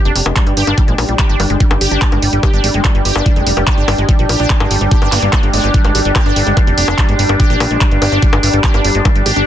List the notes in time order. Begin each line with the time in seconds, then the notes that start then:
Already playing: D4 G4 D5 G5
0.05 F1 D4, closed hi-hat
0.16 F1 G3, open hi-hat
0.26 F1 G#3, closed hi-hat, high bongo
0.36 G3, kick, clap, closed hi-hat
0.47 G1 G3, closed hi-hat
0.57 G1 G4, open hi-hat
0.67 G1 D4, closed hi-hat, high bongo
0.78 G3, kick, closed hi-hat
0.88 A#1 G#3, closed hi-hat
0.98 A#1 G3, open hi-hat, high bongo
1.09 A#1 G3, closed hi-hat
1.19 G4, kick, clap, closed hi-hat
1.29 G1 D4, closed hi-hat
1.40 G1 G3, open hi-hat, high bongo
1.50 G1 G#3, closed hi-hat
1.60 G3, kick, closed hi-hat
1.71 G1 G3, closed hi-hat, high bongo
1.81 G1 G4, open hi-hat
1.91 G1 D4, closed hi-hat
2.02 G3, kick, clap, closed hi-hat
2.12 G1 G#3, closed hi-hat, high bongo
2.22 G1 G3, open hi-hat
2.33 G1 G3, closed hi-hat
2.43 G4, kick, closed hi-hat, high bongo
2.53 G1 D4, closed hi-hat
2.64 G#1 G3, open hi-hat
2.74 G1 G#3, closed hi-hat
2.85 G3, kick, clap, closed hi-hat, high bongo
2.95 G1 G3, closed hi-hat
3.05 G1 G4, open hi-hat
3.16 G1 D4, high bongo
3.26 G3, kick, closed hi-hat
3.36 F1 G#3, closed hi-hat
3.47 F1 G3, open hi-hat
3.57 F1 G3, closed hi-hat, high bongo
3.67 kick, clap, closed hi-hat
3.78 G1 D4, closed hi-hat
3.88 G1 G3, open hi-hat, high bongo
3.98 G1 G#3, closed hi-hat
4.09 G3, kick, closed hi-hat
4.19 A#1 G3, closed hi-hat
4.29 A#1 G4, open hi-hat, high bongo
4.40 A#1 D4, closed hi-hat
4.50 G3, kick, clap, closed hi-hat
4.60 G1 G#3, closed hi-hat, high bongo
4.71 G1 G3, open hi-hat
4.81 G1 G3, closed hi-hat
4.91 G4, kick, closed hi-hat
5.02 G1 D4, closed hi-hat, high bongo
5.12 G1 A#3, clap, open hi-hat
5.22 G1 G3, closed hi-hat
5.33 A#3, kick, clap, closed hi-hat, high bongo
5.43 G1 G3, closed hi-hat
5.53 G1 G#3, open hi-hat
5.64 G1 G4, closed hi-hat
5.74 G3, kick, closed hi-hat
5.85 G1 G#3, closed hi-hat, high bongo
5.95 G#1 G3, open hi-hat
6.05 G1 G3, closed hi-hat
6.16 G4, kick, clap, closed hi-hat, high bongo
6.26 G1 D4, closed hi-hat
6.36 G1 G3, open hi-hat
6.47 G1 G#3, closed hi-hat
6.57 G3, kick, closed hi-hat, high bongo
6.67 F1 G3, closed hi-hat
6.78 F1 G4, open hi-hat
6.88 F1 D4, high bongo
6.98 G3, kick, clap, closed hi-hat
7.09 G1 G#3, closed hi-hat
7.19 G1 G3, open hi-hat
7.29 G1 G3, closed hi-hat, high bongo
7.40 G4, kick, closed hi-hat
7.50 A#1 D4, closed hi-hat
7.60 A#1 G3, open hi-hat, high bongo
7.71 A#1 G#3, closed hi-hat
7.81 G3, kick, clap, closed hi-hat
7.91 G1 G3, closed hi-hat
8.02 G1 G4, open hi-hat, high bongo
8.12 G1 D4, closed hi-hat
8.22 G3, kick, closed hi-hat
8.33 G1 G#3, closed hi-hat, high bongo
8.43 G1 G3, open hi-hat
8.53 G1 G3, closed hi-hat
8.64 G4, kick, clap, closed hi-hat
8.74 G1 D4, closed hi-hat, high bongo
8.85 G1 G3, open hi-hat
8.95 G1 G#3, closed hi-hat
9.05 G3, kick, closed hi-hat, high bongo
9.16 G1 G3, closed hi-hat
9.26 G#1 G4, open hi-hat
9.36 G1 D4, closed hi-hat